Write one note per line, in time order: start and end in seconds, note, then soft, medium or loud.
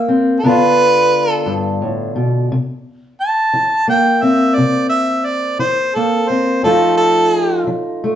0.00 0.38 A#3 medium
0.00 0.43 E4 medium
0.08 0.38 C4 medium
0.40 1.05 G2 medium
0.40 1.31 B4 loud
0.44 2.50 D3 medium
0.44 2.46 B3 medium
0.44 2.47 D4 medium
0.44 2.47 F4 medium
1.31 1.75 A4 loud
1.46 1.80 G2 medium
1.82 2.15 A2 soft
2.16 2.49 B2 medium
2.52 3.12 C3 medium
3.21 3.86 A5 medium
3.53 4.15 E3 medium
3.88 5.94 A#3 medium
3.88 4.24 G5 medium
4.23 6.30 C4 medium
4.23 4.56 E5 medium
4.54 5.19 C3 medium
4.54 4.89 D5 medium
4.89 5.27 E5 medium
5.26 5.59 D5 medium
5.59 6.21 E3 medium
5.59 5.96 C5 medium
5.94 6.60 A#3 medium
5.94 6.30 A4 medium
6.29 6.65 C4 medium
6.29 6.62 C5 medium
6.63 7.25 F2 medium
6.63 7.66 F3 medium
6.63 8.01 A3 medium
6.63 8.15 D#4 medium
6.63 8.15 F4 medium
6.63 6.97 A4 medium
6.97 7.64 A4 loud
7.67 8.15 F3 medium
8.04 8.15 A3 medium